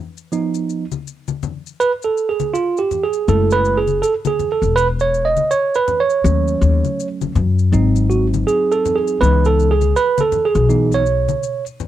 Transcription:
0.17 maracas
0.32 F3 B3 D#4, maracas
0.54 maracas
0.69 maracas
0.92 high conga, maracas
1.07 maracas
1.28 high conga, maracas
1.43 high conga, low conga, maracas
1.66 maracas
1.80 B4, maracas
2.02 A4, maracas
2.17 maracas
2.29 G#4
2.40 high conga, maracas
2.54 F4, maracas
2.77 G4, maracas
2.91 low conga, maracas
3.04 G#4
3.13 maracas
3.28 F#1 G#3 A3 E4 A4, maracas
3.51 B4, maracas
3.65 maracas
3.77 G#4
3.87 high conga, maracas
4.02 A4, maracas
4.25 G#4, high conga, maracas
4.39 high conga, low conga, maracas
4.52 A4
4.62 E1, maracas
4.76 B4, maracas
4.99 C#5, maracas
5.14 maracas
5.25 D#5
5.37 high conga, maracas
5.51 C#5, maracas
5.74 B4, maracas
5.88 low conga, maracas
6.00 C#5
6.10 maracas
6.24 D#2 F#3 A3 C#4, maracas
6.48 maracas
6.61 D#2, maracas
6.85 high conga, maracas
7.00 maracas
7.21 muted upright bass stroke, high conga, maracas
7.35 F#2, high conga, low conga, maracas
7.59 maracas
7.72 G#1 F#3 C4 D#4, maracas
7.96 maracas
8.10 F#4, maracas
8.34 high conga, maracas
8.47 G#4, maracas
8.72 A4, maracas
8.85 low conga, maracas
8.96 G#4
9.07 maracas
9.20 C#2 E3 B3 D#4 B4, maracas
9.45 A4, maracas
9.60 maracas
9.71 G#4
9.81 high conga, maracas
9.96 B4, maracas
10.18 A4, high conga, maracas
10.32 high conga, low conga, maracas
10.45 G#4
10.55 B1, maracas
10.69 E3 B3 D#4, maracas
10.92 C#5, maracas
11.06 maracas
11.29 high conga, maracas
11.43 maracas
11.66 maracas
11.80 low conga, maracas

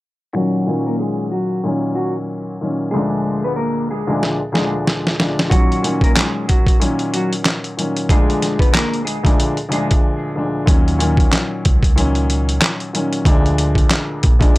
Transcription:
0.33 A#2 D#3 F#3 C#4 F#4
0.67 A#2 D#3 F#3 C#4
0.86 A#3 A#4
0.99 G#3 G#4
1.31 F#3 F#4
1.64 A#2 D#3 F#3 C#4
1.95 F#3 F#4
2.61 A#2 D#3 F#3 C#4
2.91 D2 A#2 F3 G#3 G#4
2.95 G#3 D4
3.44 B3 B4
3.56 A#3 A#4
3.91 G#3 G#4
4.07 D2 A#2 F3 G#3 D4
4.23 snare
4.52 D2 A#2 F3 G#3 D4 G#4, snare
4.87 snare
5.07 snare
5.19 D2 A#2 F3 G#3 D4, snare
5.39 snare
5.50 A#2 D#3 F#3 C#4 F#4, kick, closed hi-hat
5.72 closed hi-hat
5.83 A#2 D#3 F#3 C#4, closed hi-hat
6.01 A#3 A#4, kick, closed hi-hat
6.16 G#3 G#4, snare, clap, closed hi-hat
6.48 F#3 F#4, kick, closed hi-hat
6.67 kick, closed hi-hat
6.80 A#2 D#3 F#3 C#4, closed hi-hat
6.99 closed hi-hat
7.14 F#3 F#4, closed hi-hat
7.33 closed hi-hat
7.45 snare, clap, closed hi-hat
7.64 closed hi-hat
7.77 A#2 D#3 F#3 C#4, closed hi-hat
7.97 closed hi-hat
8.09 D2 A#2 F3 G#3 D4 G#4, kick, closed hi-hat
8.30 closed hi-hat
8.42 snare, closed hi-hat
8.59 B3 B4, kick, closed hi-hat
8.73 A#3 A#4, snare, clap, closed hi-hat
8.94 closed hi-hat
9.05 G#3 G#4, closed hi-hat
9.23 D2 A#2 F3 G#3 D4, kick, closed hi-hat
9.40 closed hi-hat
9.57 closed hi-hat
9.69 D2 A#2 F3 G#3 D4, closed hi-hat
9.73 G#3 G#4
9.91 kick, closed hi-hat
10.35 D2 A#2 F3 G#3 D4
10.66 D#2 A#2 D#3 F#3 C#4, kick, closed hi-hat
10.88 closed hi-hat
10.99 A#2 D#3 F#3 C#4, closed hi-hat
11.17 kick, closed hi-hat
11.33 snare, clap, closed hi-hat
11.65 C#2, kick, closed hi-hat
11.83 kick, closed hi-hat
11.96 A#2 D#3 F#3 C#4, closed hi-hat
12.15 closed hi-hat
12.30 closed hi-hat
12.49 closed hi-hat
12.62 snare, clap, closed hi-hat
12.80 closed hi-hat
12.93 A#2 D#3 F#3 C#4, closed hi-hat
13.13 closed hi-hat
13.25 D2 A#2 F3 G#3 D4, kick, closed hi-hat
13.46 closed hi-hat
13.58 closed hi-hat
13.75 kick, closed hi-hat
13.91 snare, clap, closed hi-hat
14.23 A#1, kick, closed hi-hat
14.39 D2 A#2 F3 G#3 D4, kick, closed hi-hat
14.55 D2

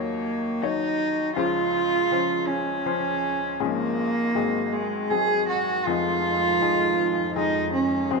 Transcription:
Already playing: D#2 D#3 F#3 A#3 D#4 C#5
0.62 F#3 D#4 C#5
1.36 C#2 C#3 F3 C#4 F4 C5
2.11 F3 C#4 C5
2.47 C#4
2.86 F3 C#4 C5
3.60 G#1 G#2 F3 A#3 C#4 G#4
4.35 G#1 G#2 F#3 C4 G#4
4.72 G#3
5.10 F#3 C4 G#4
5.49 F#4
5.86 F1 F2 F3 G#3 D#4 F4 G#4
6.61 F3 D#4 G#4
7.36 F3 D#4 G#4
7.73 C#4
8.10 G#1 G#2 D#3 F#3 C4 G#4

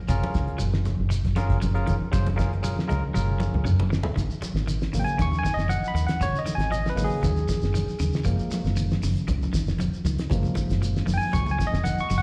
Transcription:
0.08 F#1 C3 C#4 F4 G#4 A#4, kick, closed hi-hat, shekere
0.23 closed hi-hat, high conga, low conga
0.34 C#2, kick, snare, closed hi-hat, shekere
0.48 closed hi-hat
0.58 F#1 F#3, closed hi-hat, shekere
0.74 snare
0.85 snare, closed hi-hat, high conga, low conga, shekere
0.99 F#1
1.10 muted clean electric guitar stroke, closed hi-hat, shekere
1.25 F#1, kick, snare, closed hi-hat
1.36 C#3 C#4 F4 G#4 A#4, closed hi-hat, high conga, shekere
1.50 kick, snare, closed hi-hat
1.61 F#1 F#3, closed hi-hat, high conga, shekere
1.74 C#4 F4 G#4 A#4, closed hi-hat
1.87 F1 D#3, closed hi-hat, high conga, low conga, shekere
2.01 muted fingered electric bass stroke
2.11 F#1 F#3 C#4 F4 G#4 C5, kick, snare, closed hi-hat, shekere
2.27 closed hi-hat, high conga, low conga
2.36 G#3 C#4 F4 G#4 A#4, kick, snare, closed hi-hat, shekere
2.53 closed hi-hat
2.62 F#3 C#4 F4 G#4 A#4, closed hi-hat, shekere
2.76 snare, high conga
2.87 C#2 G#3 C#4 F4 G#4 A#4, closed hi-hat, high conga, low conga, shekere
3.14 F#1 F#3 C#4 F4 G#4 A#4, high tom, shekere
3.29 high tom
3.40 F3, high conga, shekere
3.54 C#2, mid tom, high conga
3.65 F#2 F#3, mid tom, high conga, shekere
3.79 F#1, low conga
3.90 F3, snare, shekere
4.03 floor tom, low conga
4.16 G#1 D#3, kick, snare, closed hi-hat, low conga, shekere
4.30 shekere
4.42 F#3, muted fingered electric bass stroke, closed hi-hat, high conga, shekere
4.54 G#1, snare, shekere
4.67 D#3, closed hi-hat, shekere
4.81 snare, shekere
4.93 G#1 C#3 F#3 A#3, muted clean electric guitar stroke, open hi-hat, high conga, low conga, shekere
4.99 G5
5.04 G#5, closed hi-hat, shekere
5.18 D#2 C#3 C#6, kick, closed hi-hat, high conga, shekere
5.32 high conga, low conga, shekere
5.39 G#5
5.43 D#3, kick, snare, closed hi-hat, shekere
5.54 F#1 D#5
5.58 snare, shekere
5.68 F3 F#5, closed hi-hat, high conga, shekere
5.82 muted fingered electric bass stroke, shekere
5.88 B5
5.94 D#2 D#3, closed hi-hat, high conga, shekere
6.07 F#5, snare, closed hi-hat, shekere
6.21 G#1 C#3 C#5, kick, closed hi-hat, low conga, shekere
6.35 D#5, snare, shekere
6.45 D#3, muted fingered electric bass stroke, snare, closed hi-hat, high conga, shekere
6.55 G#1 G#5
6.60 snare, closed hi-hat, shekere
6.71 F3 D#5, closed hi-hat, shekere
6.86 snare, high conga, shekere
6.90 B4
6.95 G#1 C#3 D#3 F#3 A#3, open hi-hat, high conga, low conga, shekere
7.04 G#4
7.11 shekere
7.23 D#2 F#3, kick, closed hi-hat, high conga, shekere
7.36 low conga, shekere
7.49 F3, kick, snare, closed hi-hat, shekere
7.61 F#1, snare, shekere
7.74 D#3, closed hi-hat, high conga, shekere
7.87 muted fingered electric bass stroke, shekere
8.00 D#2 C#3, closed hi-hat, high conga, shekere
8.13 snare, shekere
8.24 F#1 F3 G#3 A#3, kick, closed hi-hat, low conga, shekere
8.39 shekere
8.51 F#3, muted fingered electric bass stroke, snare, closed hi-hat, high conga, shekere
8.64 F#1, snare, shekere
8.76 D#3, closed hi-hat, shekere
8.90 snare, high conga, shekere
9.02 F#1 C#3, open hi-hat, high conga, shekere
9.16 closed hi-hat, shekere
9.28 C#2 C#3, kick, closed hi-hat, high conga, shekere
9.42 high conga, low conga, shekere
9.53 D#3, kick, snare, closed hi-hat, shekere
9.66 F1, snare, shekere
9.79 F3, closed hi-hat, high conga, shekere
9.93 muted fingered electric bass stroke, shekere
10.04 C#2 D#3, closed hi-hat, high conga, shekere
10.19 snare, closed hi-hat, shekere
10.30 F#1 C#3 F3 G#3 A#3, kick, closed hi-hat, low conga, shekere
10.43 high conga, shekere
10.55 D#3, muted fingered electric bass stroke, kick, closed hi-hat, high conga, shekere
10.70 F#1, snare, closed hi-hat, shekere
10.82 F3, closed hi-hat, shekere
10.96 snare, shekere
11.06 F#1 D#3, open hi-hat, high conga, low conga, shekere
11.14 G5 G#5
11.21 shekere
11.33 C#2 F#3 C#6, kick, closed hi-hat, high conga, shekere
11.46 low conga, shekere
11.51 G#5
11.59 F3, kick, snare, closed hi-hat, shekere
11.67 D#5
11.72 F1, snare, shekere
11.84 D#3 F#5, closed hi-hat, high conga, shekere
11.98 C#6, muted fingered electric bass stroke, shekere
12.10 F#1 C#3, open hi-hat, high conga, shekere
12.18 F#5

